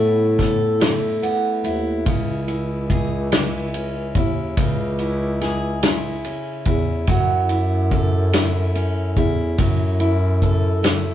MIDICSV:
0, 0, Header, 1, 4, 480
1, 0, Start_track
1, 0, Key_signature, 4, "minor"
1, 0, Tempo, 835655
1, 1187, Time_signature, 6, 3, 24, 8
1, 6401, End_track
2, 0, Start_track
2, 0, Title_t, "Steel-string acoustic guitar"
2, 0, Program_c, 0, 25
2, 0, Note_on_c, 0, 57, 76
2, 0, Note_on_c, 0, 59, 55
2, 0, Note_on_c, 0, 64, 61
2, 0, Note_on_c, 0, 69, 68
2, 213, Note_off_c, 0, 69, 0
2, 220, Note_on_c, 0, 69, 67
2, 459, Note_off_c, 0, 64, 0
2, 461, Note_on_c, 0, 64, 68
2, 696, Note_off_c, 0, 59, 0
2, 703, Note_on_c, 0, 59, 57
2, 939, Note_off_c, 0, 64, 0
2, 941, Note_on_c, 0, 64, 62
2, 1182, Note_on_c, 0, 49, 74
2, 1186, Note_off_c, 0, 57, 0
2, 1232, Note_off_c, 0, 69, 0
2, 1233, Note_off_c, 0, 59, 0
2, 1421, Note_off_c, 0, 64, 0
2, 1423, Note_on_c, 0, 64, 60
2, 1665, Note_on_c, 0, 68, 66
2, 1903, Note_off_c, 0, 64, 0
2, 1905, Note_on_c, 0, 64, 65
2, 2148, Note_on_c, 0, 61, 62
2, 2392, Note_off_c, 0, 64, 0
2, 2394, Note_on_c, 0, 64, 62
2, 2625, Note_off_c, 0, 49, 0
2, 2631, Note_on_c, 0, 49, 70
2, 2868, Note_off_c, 0, 64, 0
2, 2871, Note_on_c, 0, 64, 55
2, 3104, Note_off_c, 0, 68, 0
2, 3111, Note_on_c, 0, 68, 67
2, 3349, Note_off_c, 0, 64, 0
2, 3351, Note_on_c, 0, 64, 62
2, 3589, Note_off_c, 0, 61, 0
2, 3591, Note_on_c, 0, 61, 56
2, 3827, Note_off_c, 0, 64, 0
2, 3829, Note_on_c, 0, 64, 64
2, 4069, Note_off_c, 0, 49, 0
2, 4072, Note_on_c, 0, 54, 74
2, 4117, Note_off_c, 0, 68, 0
2, 4307, Note_off_c, 0, 64, 0
2, 4309, Note_on_c, 0, 64, 60
2, 4551, Note_on_c, 0, 69, 67
2, 4787, Note_off_c, 0, 64, 0
2, 4789, Note_on_c, 0, 64, 61
2, 5027, Note_off_c, 0, 61, 0
2, 5030, Note_on_c, 0, 61, 54
2, 5264, Note_off_c, 0, 64, 0
2, 5266, Note_on_c, 0, 64, 62
2, 5497, Note_off_c, 0, 54, 0
2, 5504, Note_on_c, 0, 54, 78
2, 5740, Note_off_c, 0, 64, 0
2, 5743, Note_on_c, 0, 64, 59
2, 5977, Note_off_c, 0, 69, 0
2, 5984, Note_on_c, 0, 69, 68
2, 6218, Note_off_c, 0, 64, 0
2, 6220, Note_on_c, 0, 64, 60
2, 6401, Note_off_c, 0, 54, 0
2, 6401, Note_off_c, 0, 61, 0
2, 6401, Note_off_c, 0, 64, 0
2, 6401, Note_off_c, 0, 69, 0
2, 6401, End_track
3, 0, Start_track
3, 0, Title_t, "Bass clarinet"
3, 0, Program_c, 1, 71
3, 0, Note_on_c, 1, 45, 101
3, 768, Note_off_c, 1, 45, 0
3, 944, Note_on_c, 1, 39, 88
3, 1171, Note_off_c, 1, 39, 0
3, 1185, Note_on_c, 1, 37, 116
3, 2363, Note_off_c, 1, 37, 0
3, 2385, Note_on_c, 1, 39, 87
3, 2612, Note_off_c, 1, 39, 0
3, 2627, Note_on_c, 1, 37, 124
3, 3648, Note_off_c, 1, 37, 0
3, 3826, Note_on_c, 1, 40, 97
3, 4052, Note_off_c, 1, 40, 0
3, 4066, Note_on_c, 1, 42, 111
3, 5243, Note_off_c, 1, 42, 0
3, 5265, Note_on_c, 1, 40, 89
3, 5491, Note_off_c, 1, 40, 0
3, 5507, Note_on_c, 1, 42, 104
3, 6401, Note_off_c, 1, 42, 0
3, 6401, End_track
4, 0, Start_track
4, 0, Title_t, "Drums"
4, 224, Note_on_c, 9, 36, 77
4, 228, Note_on_c, 9, 51, 34
4, 231, Note_on_c, 9, 38, 30
4, 281, Note_off_c, 9, 36, 0
4, 285, Note_off_c, 9, 51, 0
4, 289, Note_off_c, 9, 38, 0
4, 466, Note_on_c, 9, 51, 85
4, 470, Note_on_c, 9, 38, 104
4, 524, Note_off_c, 9, 51, 0
4, 528, Note_off_c, 9, 38, 0
4, 707, Note_on_c, 9, 51, 39
4, 765, Note_off_c, 9, 51, 0
4, 944, Note_on_c, 9, 51, 37
4, 1002, Note_off_c, 9, 51, 0
4, 1184, Note_on_c, 9, 51, 69
4, 1185, Note_on_c, 9, 36, 111
4, 1241, Note_off_c, 9, 51, 0
4, 1243, Note_off_c, 9, 36, 0
4, 1424, Note_on_c, 9, 51, 36
4, 1482, Note_off_c, 9, 51, 0
4, 1665, Note_on_c, 9, 36, 82
4, 1667, Note_on_c, 9, 51, 32
4, 1723, Note_off_c, 9, 36, 0
4, 1725, Note_off_c, 9, 51, 0
4, 1907, Note_on_c, 9, 51, 80
4, 1911, Note_on_c, 9, 38, 111
4, 1964, Note_off_c, 9, 51, 0
4, 1968, Note_off_c, 9, 38, 0
4, 2149, Note_on_c, 9, 51, 43
4, 2206, Note_off_c, 9, 51, 0
4, 2383, Note_on_c, 9, 51, 40
4, 2385, Note_on_c, 9, 36, 90
4, 2441, Note_off_c, 9, 51, 0
4, 2442, Note_off_c, 9, 36, 0
4, 2626, Note_on_c, 9, 51, 67
4, 2627, Note_on_c, 9, 36, 104
4, 2684, Note_off_c, 9, 36, 0
4, 2684, Note_off_c, 9, 51, 0
4, 2863, Note_on_c, 9, 51, 35
4, 2921, Note_off_c, 9, 51, 0
4, 3109, Note_on_c, 9, 51, 34
4, 3113, Note_on_c, 9, 38, 29
4, 3167, Note_off_c, 9, 51, 0
4, 3170, Note_off_c, 9, 38, 0
4, 3347, Note_on_c, 9, 51, 76
4, 3351, Note_on_c, 9, 38, 105
4, 3404, Note_off_c, 9, 51, 0
4, 3408, Note_off_c, 9, 38, 0
4, 3587, Note_on_c, 9, 51, 43
4, 3644, Note_off_c, 9, 51, 0
4, 3822, Note_on_c, 9, 51, 40
4, 3825, Note_on_c, 9, 36, 88
4, 3879, Note_off_c, 9, 51, 0
4, 3883, Note_off_c, 9, 36, 0
4, 4062, Note_on_c, 9, 51, 58
4, 4066, Note_on_c, 9, 36, 103
4, 4120, Note_off_c, 9, 51, 0
4, 4124, Note_off_c, 9, 36, 0
4, 4303, Note_on_c, 9, 51, 38
4, 4360, Note_off_c, 9, 51, 0
4, 4546, Note_on_c, 9, 36, 80
4, 4548, Note_on_c, 9, 51, 34
4, 4604, Note_off_c, 9, 36, 0
4, 4606, Note_off_c, 9, 51, 0
4, 4787, Note_on_c, 9, 51, 83
4, 4791, Note_on_c, 9, 38, 106
4, 4844, Note_off_c, 9, 51, 0
4, 4848, Note_off_c, 9, 38, 0
4, 5028, Note_on_c, 9, 51, 40
4, 5085, Note_off_c, 9, 51, 0
4, 5264, Note_on_c, 9, 51, 39
4, 5265, Note_on_c, 9, 36, 89
4, 5321, Note_off_c, 9, 51, 0
4, 5322, Note_off_c, 9, 36, 0
4, 5505, Note_on_c, 9, 51, 64
4, 5506, Note_on_c, 9, 36, 102
4, 5562, Note_off_c, 9, 51, 0
4, 5564, Note_off_c, 9, 36, 0
4, 5743, Note_on_c, 9, 51, 35
4, 5801, Note_off_c, 9, 51, 0
4, 5985, Note_on_c, 9, 36, 76
4, 5988, Note_on_c, 9, 51, 34
4, 6043, Note_off_c, 9, 36, 0
4, 6046, Note_off_c, 9, 51, 0
4, 6226, Note_on_c, 9, 51, 79
4, 6230, Note_on_c, 9, 38, 102
4, 6283, Note_off_c, 9, 51, 0
4, 6287, Note_off_c, 9, 38, 0
4, 6401, End_track
0, 0, End_of_file